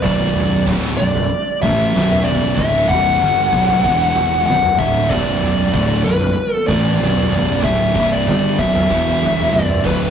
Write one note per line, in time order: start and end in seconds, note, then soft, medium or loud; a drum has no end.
0.03 0.63 B0 medium
0.03 0.66 B1 medium
0.03 0.67 F#2 loud
0.03 0.67 B2 medium
0.03 0.63 D5 loud
0.03 kick loud
0.03 floor tom medium
0.35 mid tom medium
0.67 0.97 D1 loud
0.67 0.99 D2 medium
0.67 0.99 A2 medium
0.67 0.99 D3 loud
0.67 kick medium
0.67 floor tom medium
0.97 1.29 B0 medium
0.97 1.25 B1 medium
0.97 1.25 F#2 medium
0.97 1.58 D5 loud
1.15 floor tom medium
1.62 1.92 A1 medium
1.62 1.93 A2 medium
1.62 1.94 E3 medium
1.62 1.94 A3 loud
1.62 2.28 E5 loud
1.62 kick medium
1.62 floor tom medium
1.93 2.54 B0 loud
1.93 2.56 B1 loud
1.93 2.57 F#2 medium
1.93 2.57 B2 loud
1.98 snare medium
2.11 mid tom medium
2.24 2.57 D5 loud
2.24 floor tom medium
2.55 2.87 D1 medium
2.55 2.89 D2 loud
2.55 2.89 A2 loud
2.55 2.86 E5 loud
2.55 kick loud
2.55 floor tom medium
2.59 2.89 D3 medium
2.89 3.19 C1 loud
2.89 3.20 C2 medium
2.89 3.20 G2 medium
2.89 3.21 C3 medium
2.89 4.45 F#5 loud
2.89 kick medium
2.89 mid tom medium
3.21 3.50 G1 medium
3.21 3.52 G2 medium
3.21 3.53 D3 medium
3.21 3.53 G3 medium
3.21 floor tom medium
3.53 3.82 B0 loud
3.53 3.84 B1 medium
3.53 3.85 F#2 loud
3.53 3.85 B2 loud
3.53 kick loud
3.69 floor tom medium
3.84 4.43 E1 loud
3.84 4.47 E2 medium
3.84 4.47 B2 medium
3.84 4.48 E3 loud
3.84 kick loud
4.16 floor tom medium
4.46 4.77 B0 medium
4.46 4.73 B1 medium
4.46 4.74 F#2 medium
4.46 4.79 F#5 medium
4.46 snare medium
4.63 mid tom medium
4.78 5.08 D1 loud
4.78 5.10 D2 medium
4.78 5.11 A2 loud
4.78 5.11 D3 loud
4.78 5.12 E5 loud
4.78 kick loud
4.78 floor tom medium
5.09 5.70 B0 loud
5.09 5.73 B1 medium
5.09 5.74 F#2 loud
5.09 5.74 B2 loud
5.09 6.01 D5 loud
5.09 kick loud
5.09 floor tom medium
5.43 mid tom medium
5.74 6.03 D1 loud
5.74 6.05 D2 medium
5.74 6.05 A2 medium
5.74 6.06 D3 loud
5.74 kick loud
5.74 floor tom medium
6.04 6.35 B0 medium
6.04 6.31 B1 medium
6.04 6.31 F#2 medium
6.04 6.54 B4 medium
6.21 floor tom medium
6.54 6.67 A4 medium
6.67 6.98 A1 medium
6.67 6.99 A2 medium
6.67 6.99 E3 medium
6.67 7.00 A3 loud
6.67 7.59 D5 loud
6.67 kick loud
6.67 floor tom medium
7.00 7.59 B0 loud
7.00 7.62 B1 loud
7.00 7.62 F#2 medium
7.00 7.63 B2 loud
7.00 snare medium
7.17 mid tom medium
7.32 floor tom medium
7.62 7.93 D1 loud
7.62 7.93 D2 medium
7.62 7.94 A2 medium
7.62 7.94 D3 loud
7.62 8.08 E5 loud
7.62 kick loud
7.62 floor tom medium
7.93 8.25 C1 loud
7.93 8.25 C2 medium
7.93 8.25 G2 loud
7.93 8.26 C3 medium
7.93 kick loud
8.13 8.60 D5 loud
8.26 8.56 G1 loud
8.26 8.57 G2 medium
8.26 8.57 D3 medium
8.26 8.58 G3 loud
8.26 snare medium
8.26 floor tom medium
8.58 8.88 B0 loud
8.58 8.89 B1 medium
8.58 8.89 F#2 loud
8.58 8.89 B2 loud
8.58 9.56 E5 loud
8.58 kick loud
8.75 floor tom medium
8.75 mid tom medium
8.89 9.49 E1 medium
8.89 9.52 E2 medium
8.89 9.52 B2 medium
8.89 9.52 E3 loud
8.89 kick loud
9.23 floor tom medium
9.39 mid tom medium
9.53 9.83 B0 medium
9.53 9.78 B1 medium
9.53 9.78 F#2 medium
9.53 9.85 D5 medium
9.53 snare medium
9.69 mid tom medium
9.85 10.10 D1 medium
9.85 10.10 D2 medium
9.85 10.10 A2 loud
9.85 10.10 D3 loud
9.85 10.10 B4 medium
9.85 kick loud
9.85 floor tom medium